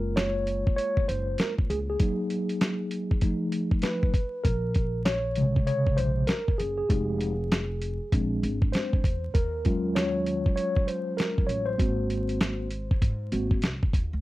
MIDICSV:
0, 0, Header, 1, 4, 480
1, 0, Start_track
1, 0, Tempo, 612245
1, 1567, Time_signature, 4, 2, 24, 8
1, 11141, End_track
2, 0, Start_track
2, 0, Title_t, "Tine electric piano"
2, 0, Program_c, 0, 4
2, 0, Note_on_c, 0, 56, 52
2, 0, Note_on_c, 0, 58, 54
2, 0, Note_on_c, 0, 65, 59
2, 0, Note_on_c, 0, 70, 96
2, 125, Note_on_c, 0, 73, 93
2, 140, Note_off_c, 0, 70, 0
2, 590, Note_off_c, 0, 73, 0
2, 599, Note_on_c, 0, 73, 101
2, 826, Note_off_c, 0, 73, 0
2, 849, Note_on_c, 0, 72, 98
2, 1095, Note_off_c, 0, 72, 0
2, 1095, Note_on_c, 0, 70, 86
2, 1201, Note_off_c, 0, 70, 0
2, 1332, Note_on_c, 0, 68, 83
2, 1400, Note_off_c, 0, 68, 0
2, 1486, Note_on_c, 0, 68, 81
2, 1532, Note_off_c, 0, 56, 0
2, 1535, Note_off_c, 0, 58, 0
2, 1537, Note_off_c, 0, 65, 0
2, 1563, Note_on_c, 0, 54, 54
2, 1565, Note_on_c, 0, 58, 51
2, 1573, Note_on_c, 0, 63, 61
2, 2494, Note_off_c, 0, 54, 0
2, 2495, Note_off_c, 0, 58, 0
2, 2499, Note_off_c, 0, 63, 0
2, 2529, Note_on_c, 0, 53, 53
2, 2534, Note_on_c, 0, 57, 47
2, 2539, Note_on_c, 0, 63, 60
2, 2892, Note_off_c, 0, 68, 0
2, 3002, Note_on_c, 0, 71, 91
2, 3217, Note_off_c, 0, 53, 0
2, 3219, Note_off_c, 0, 57, 0
2, 3222, Note_off_c, 0, 63, 0
2, 3478, Note_on_c, 0, 70, 94
2, 3499, Note_off_c, 0, 71, 0
2, 3931, Note_off_c, 0, 70, 0
2, 3962, Note_on_c, 0, 73, 92
2, 4209, Note_on_c, 0, 49, 54
2, 4212, Note_on_c, 0, 56, 49
2, 4219, Note_on_c, 0, 48, 64
2, 4434, Note_off_c, 0, 73, 0
2, 4443, Note_on_c, 0, 73, 99
2, 4678, Note_on_c, 0, 72, 97
2, 4692, Note_off_c, 0, 73, 0
2, 4897, Note_off_c, 0, 49, 0
2, 4898, Note_off_c, 0, 56, 0
2, 4902, Note_off_c, 0, 48, 0
2, 4917, Note_on_c, 0, 70, 88
2, 4930, Note_off_c, 0, 72, 0
2, 5160, Note_on_c, 0, 68, 81
2, 5170, Note_off_c, 0, 70, 0
2, 5303, Note_off_c, 0, 68, 0
2, 5312, Note_on_c, 0, 68, 77
2, 5400, Note_on_c, 0, 67, 56
2, 5404, Note_on_c, 0, 56, 52
2, 5411, Note_on_c, 0, 63, 60
2, 5747, Note_off_c, 0, 67, 0
2, 5749, Note_off_c, 0, 56, 0
2, 5753, Note_off_c, 0, 63, 0
2, 6372, Note_on_c, 0, 56, 57
2, 6374, Note_on_c, 0, 60, 54
2, 6379, Note_on_c, 0, 62, 63
2, 6725, Note_off_c, 0, 68, 0
2, 6840, Note_on_c, 0, 72, 88
2, 7058, Note_off_c, 0, 56, 0
2, 7059, Note_off_c, 0, 60, 0
2, 7062, Note_off_c, 0, 62, 0
2, 7323, Note_on_c, 0, 70, 91
2, 7338, Note_off_c, 0, 72, 0
2, 7566, Note_on_c, 0, 54, 59
2, 7568, Note_on_c, 0, 56, 48
2, 7571, Note_on_c, 0, 65, 65
2, 7573, Note_on_c, 0, 61, 53
2, 7804, Note_on_c, 0, 73, 88
2, 7819, Note_off_c, 0, 70, 0
2, 8268, Note_off_c, 0, 73, 0
2, 8278, Note_on_c, 0, 73, 89
2, 8525, Note_on_c, 0, 72, 90
2, 8530, Note_off_c, 0, 73, 0
2, 8757, Note_on_c, 0, 70, 84
2, 8774, Note_off_c, 0, 72, 0
2, 8990, Note_on_c, 0, 73, 84
2, 9010, Note_off_c, 0, 70, 0
2, 9139, Note_on_c, 0, 72, 84
2, 9156, Note_off_c, 0, 73, 0
2, 9215, Note_off_c, 0, 54, 0
2, 9216, Note_off_c, 0, 56, 0
2, 9218, Note_off_c, 0, 65, 0
2, 9219, Note_off_c, 0, 61, 0
2, 9235, Note_on_c, 0, 58, 55
2, 9236, Note_on_c, 0, 60, 53
2, 9244, Note_on_c, 0, 66, 60
2, 9930, Note_off_c, 0, 58, 0
2, 9931, Note_off_c, 0, 60, 0
2, 9934, Note_off_c, 0, 66, 0
2, 10442, Note_on_c, 0, 58, 52
2, 10444, Note_on_c, 0, 60, 50
2, 10449, Note_on_c, 0, 66, 56
2, 10558, Note_off_c, 0, 72, 0
2, 10660, Note_off_c, 0, 58, 0
2, 10661, Note_off_c, 0, 60, 0
2, 10664, Note_off_c, 0, 66, 0
2, 11141, End_track
3, 0, Start_track
3, 0, Title_t, "Upright bass"
3, 0, Program_c, 1, 32
3, 0, Note_on_c, 1, 30, 95
3, 489, Note_off_c, 1, 30, 0
3, 855, Note_on_c, 1, 30, 88
3, 1050, Note_off_c, 1, 30, 0
3, 1330, Note_on_c, 1, 37, 85
3, 1527, Note_off_c, 1, 37, 0
3, 3489, Note_on_c, 1, 34, 94
3, 4329, Note_off_c, 1, 34, 0
3, 4691, Note_on_c, 1, 34, 88
3, 4888, Note_off_c, 1, 34, 0
3, 5175, Note_on_c, 1, 30, 83
3, 5370, Note_off_c, 1, 30, 0
3, 5410, Note_on_c, 1, 29, 101
3, 6250, Note_off_c, 1, 29, 0
3, 6369, Note_on_c, 1, 34, 98
3, 6566, Note_off_c, 1, 34, 0
3, 6610, Note_on_c, 1, 32, 86
3, 6806, Note_off_c, 1, 32, 0
3, 7089, Note_on_c, 1, 40, 81
3, 7286, Note_off_c, 1, 40, 0
3, 7332, Note_on_c, 1, 39, 98
3, 8170, Note_off_c, 1, 39, 0
3, 9005, Note_on_c, 1, 33, 88
3, 9204, Note_off_c, 1, 33, 0
3, 9250, Note_on_c, 1, 32, 102
3, 10090, Note_off_c, 1, 32, 0
3, 10208, Note_on_c, 1, 44, 97
3, 10406, Note_off_c, 1, 44, 0
3, 10451, Note_on_c, 1, 32, 91
3, 10648, Note_off_c, 1, 32, 0
3, 10688, Note_on_c, 1, 36, 76
3, 10813, Note_off_c, 1, 36, 0
3, 10928, Note_on_c, 1, 39, 81
3, 11053, Note_off_c, 1, 39, 0
3, 11079, Note_on_c, 1, 38, 86
3, 11141, Note_off_c, 1, 38, 0
3, 11141, End_track
4, 0, Start_track
4, 0, Title_t, "Drums"
4, 131, Note_on_c, 9, 42, 90
4, 134, Note_on_c, 9, 38, 116
4, 210, Note_off_c, 9, 42, 0
4, 213, Note_off_c, 9, 38, 0
4, 367, Note_on_c, 9, 42, 65
4, 446, Note_off_c, 9, 42, 0
4, 524, Note_on_c, 9, 36, 96
4, 603, Note_off_c, 9, 36, 0
4, 614, Note_on_c, 9, 42, 78
4, 692, Note_off_c, 9, 42, 0
4, 761, Note_on_c, 9, 36, 82
4, 839, Note_off_c, 9, 36, 0
4, 853, Note_on_c, 9, 42, 74
4, 932, Note_off_c, 9, 42, 0
4, 1083, Note_on_c, 9, 42, 78
4, 1095, Note_on_c, 9, 38, 100
4, 1161, Note_off_c, 9, 42, 0
4, 1174, Note_off_c, 9, 38, 0
4, 1242, Note_on_c, 9, 36, 85
4, 1321, Note_off_c, 9, 36, 0
4, 1335, Note_on_c, 9, 42, 70
4, 1413, Note_off_c, 9, 42, 0
4, 1564, Note_on_c, 9, 42, 86
4, 1568, Note_on_c, 9, 36, 104
4, 1643, Note_off_c, 9, 42, 0
4, 1646, Note_off_c, 9, 36, 0
4, 1804, Note_on_c, 9, 42, 60
4, 1883, Note_off_c, 9, 42, 0
4, 1955, Note_on_c, 9, 42, 47
4, 2033, Note_off_c, 9, 42, 0
4, 2046, Note_on_c, 9, 42, 93
4, 2049, Note_on_c, 9, 38, 111
4, 2125, Note_off_c, 9, 42, 0
4, 2127, Note_off_c, 9, 38, 0
4, 2281, Note_on_c, 9, 42, 64
4, 2359, Note_off_c, 9, 42, 0
4, 2439, Note_on_c, 9, 36, 92
4, 2518, Note_off_c, 9, 36, 0
4, 2519, Note_on_c, 9, 42, 79
4, 2524, Note_on_c, 9, 36, 91
4, 2598, Note_off_c, 9, 42, 0
4, 2603, Note_off_c, 9, 36, 0
4, 2760, Note_on_c, 9, 42, 76
4, 2839, Note_off_c, 9, 42, 0
4, 2911, Note_on_c, 9, 36, 86
4, 2990, Note_off_c, 9, 36, 0
4, 2994, Note_on_c, 9, 42, 78
4, 3006, Note_on_c, 9, 38, 100
4, 3072, Note_off_c, 9, 42, 0
4, 3084, Note_off_c, 9, 38, 0
4, 3159, Note_on_c, 9, 36, 84
4, 3237, Note_off_c, 9, 36, 0
4, 3244, Note_on_c, 9, 36, 92
4, 3248, Note_on_c, 9, 42, 66
4, 3322, Note_off_c, 9, 36, 0
4, 3327, Note_off_c, 9, 42, 0
4, 3486, Note_on_c, 9, 36, 96
4, 3487, Note_on_c, 9, 42, 85
4, 3565, Note_off_c, 9, 36, 0
4, 3565, Note_off_c, 9, 42, 0
4, 3720, Note_on_c, 9, 42, 58
4, 3730, Note_on_c, 9, 36, 92
4, 3799, Note_off_c, 9, 42, 0
4, 3808, Note_off_c, 9, 36, 0
4, 3963, Note_on_c, 9, 42, 91
4, 3966, Note_on_c, 9, 38, 107
4, 4041, Note_off_c, 9, 42, 0
4, 4044, Note_off_c, 9, 38, 0
4, 4198, Note_on_c, 9, 42, 65
4, 4276, Note_off_c, 9, 42, 0
4, 4361, Note_on_c, 9, 36, 94
4, 4439, Note_off_c, 9, 36, 0
4, 4446, Note_on_c, 9, 42, 78
4, 4524, Note_off_c, 9, 42, 0
4, 4599, Note_on_c, 9, 36, 88
4, 4677, Note_off_c, 9, 36, 0
4, 4686, Note_on_c, 9, 42, 77
4, 4764, Note_off_c, 9, 42, 0
4, 4918, Note_on_c, 9, 42, 76
4, 4930, Note_on_c, 9, 38, 97
4, 4996, Note_off_c, 9, 42, 0
4, 5009, Note_off_c, 9, 38, 0
4, 5082, Note_on_c, 9, 36, 86
4, 5160, Note_off_c, 9, 36, 0
4, 5171, Note_on_c, 9, 42, 71
4, 5250, Note_off_c, 9, 42, 0
4, 5408, Note_on_c, 9, 36, 98
4, 5409, Note_on_c, 9, 42, 87
4, 5487, Note_off_c, 9, 36, 0
4, 5488, Note_off_c, 9, 42, 0
4, 5649, Note_on_c, 9, 42, 61
4, 5727, Note_off_c, 9, 42, 0
4, 5892, Note_on_c, 9, 42, 89
4, 5895, Note_on_c, 9, 38, 113
4, 5971, Note_off_c, 9, 42, 0
4, 5974, Note_off_c, 9, 38, 0
4, 6127, Note_on_c, 9, 42, 65
4, 6206, Note_off_c, 9, 42, 0
4, 6369, Note_on_c, 9, 36, 89
4, 6369, Note_on_c, 9, 42, 78
4, 6447, Note_off_c, 9, 36, 0
4, 6447, Note_off_c, 9, 42, 0
4, 6613, Note_on_c, 9, 42, 74
4, 6691, Note_off_c, 9, 42, 0
4, 6757, Note_on_c, 9, 36, 91
4, 6835, Note_off_c, 9, 36, 0
4, 6847, Note_on_c, 9, 42, 74
4, 6860, Note_on_c, 9, 38, 95
4, 6926, Note_off_c, 9, 42, 0
4, 6938, Note_off_c, 9, 38, 0
4, 7003, Note_on_c, 9, 36, 85
4, 7081, Note_off_c, 9, 36, 0
4, 7087, Note_on_c, 9, 36, 93
4, 7095, Note_on_c, 9, 42, 75
4, 7166, Note_off_c, 9, 36, 0
4, 7173, Note_off_c, 9, 42, 0
4, 7328, Note_on_c, 9, 36, 100
4, 7328, Note_on_c, 9, 42, 85
4, 7406, Note_off_c, 9, 42, 0
4, 7407, Note_off_c, 9, 36, 0
4, 7565, Note_on_c, 9, 42, 61
4, 7572, Note_on_c, 9, 36, 90
4, 7643, Note_off_c, 9, 42, 0
4, 7650, Note_off_c, 9, 36, 0
4, 7809, Note_on_c, 9, 42, 94
4, 7812, Note_on_c, 9, 38, 113
4, 7888, Note_off_c, 9, 42, 0
4, 7891, Note_off_c, 9, 38, 0
4, 8047, Note_on_c, 9, 42, 67
4, 8126, Note_off_c, 9, 42, 0
4, 8201, Note_on_c, 9, 36, 93
4, 8279, Note_off_c, 9, 36, 0
4, 8290, Note_on_c, 9, 42, 80
4, 8368, Note_off_c, 9, 42, 0
4, 8439, Note_on_c, 9, 36, 84
4, 8518, Note_off_c, 9, 36, 0
4, 8529, Note_on_c, 9, 42, 72
4, 8608, Note_off_c, 9, 42, 0
4, 8767, Note_on_c, 9, 42, 75
4, 8780, Note_on_c, 9, 38, 100
4, 8845, Note_off_c, 9, 42, 0
4, 8858, Note_off_c, 9, 38, 0
4, 8922, Note_on_c, 9, 36, 86
4, 9001, Note_off_c, 9, 36, 0
4, 9010, Note_on_c, 9, 42, 72
4, 9088, Note_off_c, 9, 42, 0
4, 9247, Note_on_c, 9, 36, 97
4, 9247, Note_on_c, 9, 42, 79
4, 9325, Note_off_c, 9, 36, 0
4, 9326, Note_off_c, 9, 42, 0
4, 9487, Note_on_c, 9, 42, 60
4, 9566, Note_off_c, 9, 42, 0
4, 9636, Note_on_c, 9, 42, 49
4, 9714, Note_off_c, 9, 42, 0
4, 9726, Note_on_c, 9, 42, 90
4, 9729, Note_on_c, 9, 38, 120
4, 9805, Note_off_c, 9, 42, 0
4, 9807, Note_off_c, 9, 38, 0
4, 9961, Note_on_c, 9, 42, 65
4, 10039, Note_off_c, 9, 42, 0
4, 10122, Note_on_c, 9, 36, 96
4, 10200, Note_off_c, 9, 36, 0
4, 10206, Note_on_c, 9, 36, 83
4, 10206, Note_on_c, 9, 42, 78
4, 10285, Note_off_c, 9, 36, 0
4, 10285, Note_off_c, 9, 42, 0
4, 10443, Note_on_c, 9, 42, 75
4, 10521, Note_off_c, 9, 42, 0
4, 10592, Note_on_c, 9, 36, 85
4, 10670, Note_off_c, 9, 36, 0
4, 10678, Note_on_c, 9, 42, 78
4, 10691, Note_on_c, 9, 38, 108
4, 10757, Note_off_c, 9, 42, 0
4, 10769, Note_off_c, 9, 38, 0
4, 10841, Note_on_c, 9, 36, 90
4, 10920, Note_off_c, 9, 36, 0
4, 10924, Note_on_c, 9, 36, 90
4, 10930, Note_on_c, 9, 42, 70
4, 11003, Note_off_c, 9, 36, 0
4, 11008, Note_off_c, 9, 42, 0
4, 11141, End_track
0, 0, End_of_file